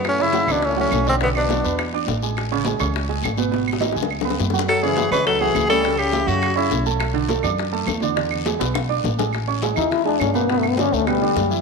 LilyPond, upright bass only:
\new Staff \with { instrumentName = "Upright bass" } { \clef bass \time 4/4 \key a \major \tempo 4 = 207 fis,4. cis,4. b,,4~ | b,,4. e,4. a,,4~ | a,,4. cis,4. gis,,4~ | gis,,4. cis,4. fis,4~ |
fis,4. cis,4. cis,4~ | cis,4. fis,4. b,,4~ | b,,4. fis,4. e,4~ | e,4. b,,4. a,,4~ |
a,,4. e,4. g,4~ | g,4. d,4. fis,4 | }